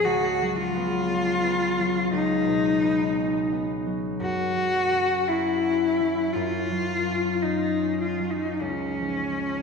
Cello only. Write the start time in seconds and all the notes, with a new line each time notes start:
0.05 F#4
0.56 F4
2.13 D#4
4.22 F#4
5.27 E4
6.34 F4
7.42 D#4
8.01 F4
8.30 D#4
8.61 C#4